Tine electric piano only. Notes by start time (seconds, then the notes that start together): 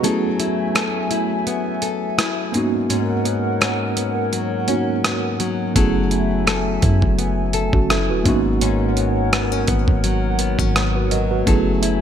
Already playing: F#4 B4
0.03 A3 B3 C#4 E4
0.07 G#4
2.52 A#3 B3 C#4 D#4
2.57 F#4
4.68 A#3 B3 C#4 D#4 F#4
5.74 A3 B3 C#4 E4
5.79 G#4
7.74 C#4 F#4
7.91 E4 A4
8.10 F#4 B4
8.24 A#3 B3 C#4 D#4
8.29 F#4
10.95 F#4 B4
11.12 A#4 D#5
11.31 F#4 B4
11.45 A3 B3 C#4 E4
11.50 G#4